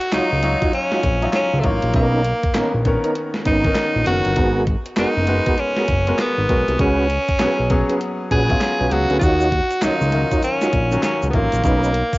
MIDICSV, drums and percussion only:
0, 0, Header, 1, 2, 480
1, 0, Start_track
1, 0, Key_signature, -6, "minor"
1, 0, Tempo, 606061
1, 1539, Time_signature, 4, 2, 24, 8
1, 9647, End_track
2, 0, Start_track
2, 0, Title_t, "Drums"
2, 8, Note_on_c, 9, 42, 61
2, 87, Note_off_c, 9, 42, 0
2, 97, Note_on_c, 9, 38, 123
2, 98, Note_on_c, 9, 42, 78
2, 99, Note_on_c, 9, 39, 98
2, 177, Note_off_c, 9, 38, 0
2, 177, Note_off_c, 9, 42, 0
2, 178, Note_off_c, 9, 39, 0
2, 338, Note_on_c, 9, 42, 76
2, 417, Note_off_c, 9, 42, 0
2, 490, Note_on_c, 9, 36, 96
2, 490, Note_on_c, 9, 42, 64
2, 569, Note_off_c, 9, 42, 0
2, 570, Note_off_c, 9, 36, 0
2, 580, Note_on_c, 9, 42, 69
2, 659, Note_off_c, 9, 42, 0
2, 727, Note_on_c, 9, 38, 59
2, 806, Note_off_c, 9, 38, 0
2, 819, Note_on_c, 9, 42, 80
2, 820, Note_on_c, 9, 36, 93
2, 898, Note_off_c, 9, 42, 0
2, 899, Note_off_c, 9, 36, 0
2, 969, Note_on_c, 9, 42, 48
2, 1048, Note_off_c, 9, 42, 0
2, 1054, Note_on_c, 9, 38, 104
2, 1054, Note_on_c, 9, 42, 80
2, 1056, Note_on_c, 9, 39, 75
2, 1133, Note_off_c, 9, 38, 0
2, 1133, Note_off_c, 9, 42, 0
2, 1135, Note_off_c, 9, 39, 0
2, 1296, Note_on_c, 9, 42, 76
2, 1299, Note_on_c, 9, 36, 97
2, 1375, Note_off_c, 9, 42, 0
2, 1378, Note_off_c, 9, 36, 0
2, 1444, Note_on_c, 9, 42, 52
2, 1524, Note_off_c, 9, 42, 0
2, 1534, Note_on_c, 9, 42, 83
2, 1537, Note_on_c, 9, 36, 117
2, 1613, Note_off_c, 9, 42, 0
2, 1616, Note_off_c, 9, 36, 0
2, 1778, Note_on_c, 9, 42, 70
2, 1857, Note_off_c, 9, 42, 0
2, 1927, Note_on_c, 9, 42, 60
2, 1929, Note_on_c, 9, 36, 94
2, 2006, Note_off_c, 9, 42, 0
2, 2008, Note_off_c, 9, 36, 0
2, 2016, Note_on_c, 9, 38, 126
2, 2017, Note_on_c, 9, 42, 88
2, 2018, Note_on_c, 9, 39, 106
2, 2095, Note_off_c, 9, 38, 0
2, 2096, Note_off_c, 9, 42, 0
2, 2097, Note_off_c, 9, 39, 0
2, 2258, Note_on_c, 9, 42, 75
2, 2260, Note_on_c, 9, 36, 98
2, 2337, Note_off_c, 9, 42, 0
2, 2339, Note_off_c, 9, 36, 0
2, 2408, Note_on_c, 9, 42, 59
2, 2487, Note_off_c, 9, 42, 0
2, 2498, Note_on_c, 9, 42, 65
2, 2577, Note_off_c, 9, 42, 0
2, 2645, Note_on_c, 9, 38, 65
2, 2724, Note_off_c, 9, 38, 0
2, 2736, Note_on_c, 9, 42, 89
2, 2738, Note_on_c, 9, 36, 93
2, 2815, Note_off_c, 9, 42, 0
2, 2818, Note_off_c, 9, 36, 0
2, 2886, Note_on_c, 9, 42, 49
2, 2888, Note_on_c, 9, 36, 94
2, 2965, Note_off_c, 9, 42, 0
2, 2968, Note_off_c, 9, 36, 0
2, 2972, Note_on_c, 9, 38, 102
2, 2972, Note_on_c, 9, 42, 73
2, 2974, Note_on_c, 9, 39, 79
2, 3051, Note_off_c, 9, 38, 0
2, 3051, Note_off_c, 9, 42, 0
2, 3053, Note_off_c, 9, 39, 0
2, 3217, Note_on_c, 9, 42, 68
2, 3296, Note_off_c, 9, 42, 0
2, 3365, Note_on_c, 9, 42, 49
2, 3444, Note_off_c, 9, 42, 0
2, 3454, Note_on_c, 9, 42, 80
2, 3457, Note_on_c, 9, 36, 121
2, 3533, Note_off_c, 9, 42, 0
2, 3537, Note_off_c, 9, 36, 0
2, 3698, Note_on_c, 9, 42, 65
2, 3699, Note_on_c, 9, 36, 82
2, 3777, Note_off_c, 9, 42, 0
2, 3778, Note_off_c, 9, 36, 0
2, 3847, Note_on_c, 9, 42, 65
2, 3926, Note_off_c, 9, 42, 0
2, 3934, Note_on_c, 9, 38, 124
2, 3935, Note_on_c, 9, 42, 84
2, 3936, Note_on_c, 9, 39, 102
2, 4013, Note_off_c, 9, 38, 0
2, 4014, Note_off_c, 9, 42, 0
2, 4015, Note_off_c, 9, 39, 0
2, 4175, Note_on_c, 9, 42, 71
2, 4254, Note_off_c, 9, 42, 0
2, 4327, Note_on_c, 9, 42, 63
2, 4330, Note_on_c, 9, 36, 95
2, 4406, Note_off_c, 9, 42, 0
2, 4409, Note_off_c, 9, 36, 0
2, 4417, Note_on_c, 9, 42, 73
2, 4496, Note_off_c, 9, 42, 0
2, 4567, Note_on_c, 9, 38, 68
2, 4646, Note_off_c, 9, 38, 0
2, 4657, Note_on_c, 9, 42, 80
2, 4661, Note_on_c, 9, 36, 88
2, 4736, Note_off_c, 9, 42, 0
2, 4740, Note_off_c, 9, 36, 0
2, 4808, Note_on_c, 9, 42, 49
2, 4888, Note_off_c, 9, 42, 0
2, 4899, Note_on_c, 9, 42, 86
2, 4900, Note_on_c, 9, 38, 102
2, 4901, Note_on_c, 9, 39, 83
2, 4978, Note_off_c, 9, 42, 0
2, 4979, Note_off_c, 9, 38, 0
2, 4981, Note_off_c, 9, 39, 0
2, 5142, Note_on_c, 9, 36, 98
2, 5142, Note_on_c, 9, 42, 71
2, 5221, Note_off_c, 9, 36, 0
2, 5221, Note_off_c, 9, 42, 0
2, 5292, Note_on_c, 9, 42, 47
2, 5371, Note_off_c, 9, 42, 0
2, 5379, Note_on_c, 9, 42, 78
2, 5380, Note_on_c, 9, 36, 116
2, 5459, Note_off_c, 9, 42, 0
2, 5460, Note_off_c, 9, 36, 0
2, 5621, Note_on_c, 9, 42, 68
2, 5700, Note_off_c, 9, 42, 0
2, 5770, Note_on_c, 9, 42, 60
2, 5771, Note_on_c, 9, 36, 91
2, 5849, Note_off_c, 9, 42, 0
2, 5850, Note_off_c, 9, 36, 0
2, 5856, Note_on_c, 9, 38, 123
2, 5857, Note_on_c, 9, 42, 81
2, 5858, Note_on_c, 9, 39, 93
2, 5935, Note_off_c, 9, 38, 0
2, 5936, Note_off_c, 9, 42, 0
2, 5937, Note_off_c, 9, 39, 0
2, 6097, Note_on_c, 9, 42, 76
2, 6102, Note_on_c, 9, 36, 104
2, 6177, Note_off_c, 9, 42, 0
2, 6181, Note_off_c, 9, 36, 0
2, 6253, Note_on_c, 9, 42, 60
2, 6332, Note_off_c, 9, 42, 0
2, 6343, Note_on_c, 9, 42, 72
2, 6422, Note_off_c, 9, 42, 0
2, 6582, Note_on_c, 9, 36, 94
2, 6582, Note_on_c, 9, 42, 84
2, 6661, Note_off_c, 9, 36, 0
2, 6661, Note_off_c, 9, 42, 0
2, 6731, Note_on_c, 9, 36, 92
2, 6732, Note_on_c, 9, 42, 47
2, 6811, Note_off_c, 9, 36, 0
2, 6811, Note_off_c, 9, 42, 0
2, 6818, Note_on_c, 9, 42, 76
2, 6819, Note_on_c, 9, 38, 102
2, 6821, Note_on_c, 9, 39, 82
2, 6898, Note_off_c, 9, 38, 0
2, 6898, Note_off_c, 9, 42, 0
2, 6900, Note_off_c, 9, 39, 0
2, 7059, Note_on_c, 9, 42, 68
2, 7139, Note_off_c, 9, 42, 0
2, 7207, Note_on_c, 9, 42, 47
2, 7287, Note_off_c, 9, 42, 0
2, 7297, Note_on_c, 9, 42, 78
2, 7298, Note_on_c, 9, 36, 121
2, 7302, Note_on_c, 9, 82, 66
2, 7377, Note_off_c, 9, 42, 0
2, 7378, Note_off_c, 9, 36, 0
2, 7381, Note_off_c, 9, 82, 0
2, 7450, Note_on_c, 9, 82, 57
2, 7529, Note_off_c, 9, 82, 0
2, 7539, Note_on_c, 9, 36, 81
2, 7541, Note_on_c, 9, 42, 74
2, 7618, Note_off_c, 9, 36, 0
2, 7620, Note_off_c, 9, 42, 0
2, 7686, Note_on_c, 9, 42, 56
2, 7690, Note_on_c, 9, 82, 45
2, 7766, Note_off_c, 9, 42, 0
2, 7770, Note_off_c, 9, 82, 0
2, 7776, Note_on_c, 9, 38, 118
2, 7777, Note_on_c, 9, 42, 82
2, 7778, Note_on_c, 9, 39, 92
2, 7778, Note_on_c, 9, 82, 65
2, 7855, Note_off_c, 9, 38, 0
2, 7856, Note_off_c, 9, 42, 0
2, 7857, Note_off_c, 9, 39, 0
2, 7857, Note_off_c, 9, 82, 0
2, 7929, Note_on_c, 9, 82, 51
2, 8008, Note_off_c, 9, 82, 0
2, 8017, Note_on_c, 9, 42, 74
2, 8096, Note_off_c, 9, 42, 0
2, 8168, Note_on_c, 9, 82, 46
2, 8169, Note_on_c, 9, 42, 61
2, 8170, Note_on_c, 9, 36, 93
2, 8248, Note_off_c, 9, 42, 0
2, 8248, Note_off_c, 9, 82, 0
2, 8249, Note_off_c, 9, 36, 0
2, 8257, Note_on_c, 9, 82, 69
2, 8258, Note_on_c, 9, 42, 69
2, 8337, Note_off_c, 9, 42, 0
2, 8337, Note_off_c, 9, 82, 0
2, 8406, Note_on_c, 9, 82, 54
2, 8407, Note_on_c, 9, 38, 65
2, 8486, Note_off_c, 9, 82, 0
2, 8487, Note_off_c, 9, 38, 0
2, 8497, Note_on_c, 9, 42, 83
2, 8500, Note_on_c, 9, 36, 92
2, 8576, Note_off_c, 9, 42, 0
2, 8579, Note_off_c, 9, 36, 0
2, 8646, Note_on_c, 9, 82, 52
2, 8652, Note_on_c, 9, 42, 45
2, 8725, Note_off_c, 9, 82, 0
2, 8731, Note_off_c, 9, 42, 0
2, 8736, Note_on_c, 9, 38, 93
2, 8736, Note_on_c, 9, 42, 79
2, 8737, Note_on_c, 9, 82, 62
2, 8738, Note_on_c, 9, 39, 79
2, 8815, Note_off_c, 9, 38, 0
2, 8815, Note_off_c, 9, 42, 0
2, 8816, Note_off_c, 9, 82, 0
2, 8817, Note_off_c, 9, 39, 0
2, 8888, Note_on_c, 9, 82, 47
2, 8967, Note_off_c, 9, 82, 0
2, 8977, Note_on_c, 9, 42, 70
2, 8979, Note_on_c, 9, 36, 95
2, 9056, Note_off_c, 9, 42, 0
2, 9058, Note_off_c, 9, 36, 0
2, 9125, Note_on_c, 9, 42, 45
2, 9131, Note_on_c, 9, 82, 46
2, 9204, Note_off_c, 9, 42, 0
2, 9210, Note_off_c, 9, 82, 0
2, 9216, Note_on_c, 9, 42, 78
2, 9217, Note_on_c, 9, 36, 121
2, 9223, Note_on_c, 9, 82, 65
2, 9295, Note_off_c, 9, 42, 0
2, 9296, Note_off_c, 9, 36, 0
2, 9302, Note_off_c, 9, 82, 0
2, 9374, Note_on_c, 9, 82, 53
2, 9453, Note_off_c, 9, 82, 0
2, 9458, Note_on_c, 9, 42, 69
2, 9537, Note_off_c, 9, 42, 0
2, 9607, Note_on_c, 9, 42, 60
2, 9608, Note_on_c, 9, 36, 88
2, 9613, Note_on_c, 9, 82, 49
2, 9647, Note_off_c, 9, 36, 0
2, 9647, Note_off_c, 9, 42, 0
2, 9647, Note_off_c, 9, 82, 0
2, 9647, End_track
0, 0, End_of_file